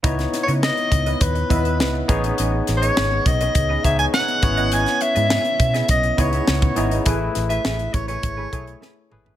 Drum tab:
HH |xxxx-xxxxxxx--xx|x-xx--xxx-xx-xxx|xxxx-xxxxxxx-xxx|x-xx-xxxx-xx----|
SD |-oo-o-------o---|--o-o-------o---|-o--o--o----o---|--o-o-------o---|
T2 |----------------|----------------|----------------|--------------o-|
FT |----------------|----------------|----------------|---------------o|
BD |o-----o-o-o---o-|------o-o-o---o-|------o-o-o--o--|o-----o-o-o-----|